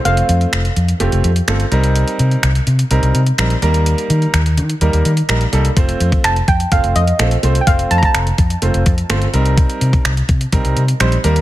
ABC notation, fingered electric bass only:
X:1
M:4/4
L:1/16
Q:1/4=126
K:Cdor
V:1 name="Fingered electric bass" clef=bass
F,,,2 F,,2 F,,,2 F,,2 F,,, F,,, F,,2 G,,,2 C,,2- | C,,2 C,2 C,,2 C,2 C,, C,, C,2 B,,,2 E,,2- | E,,2 E,2 E,,2 E,2 E,, E,, E,2 B,,,2 C,,2 | F,,,2 F,,2 F,,,2 F,,2 F,,, F,,, F,,2 B,,,2 C,,2 |
F,,,2 F,,2 F,,,2 F,,2 F,,, F,,, F,,2 G,,,2 C,,2- | C,,2 C,2 C,,2 C,2 C,, C,, C,2 B,,,2 E,,2 |]